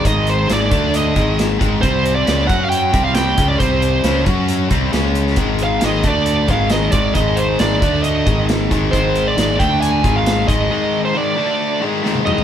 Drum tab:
HH |x-x-x-x-x-x-x-x-|x-x-x-x-x-x-x-x-|x-x-x-x-x-x-x-x-|x-x-x-x-x-x-x-x-|
SD |----o-------o---|----o-------o---|----o-------o--o|----o-------o---|
T1 |----------------|----------------|----------------|----------------|
T2 |----------------|----------------|----------------|----------------|
FT |----------------|----------------|----------------|----------------|
BD |o-----o---o---o-|o-----o---o---o-|o-----o---o-----|o-----o---o---o-|

HH |x-x-x-x-x-x-x-x-|x-x-x-x-x-x-x-x-|----------------|
SD |----o-------o-o-|----o-------o---|------------o---|
T1 |----------------|----------------|-------------o--|
T2 |----------------|----------------|--------------o-|
FT |----------------|----------------|---------------o|
BD |o-----o---o---o-|o-----o---o---o-|----------------|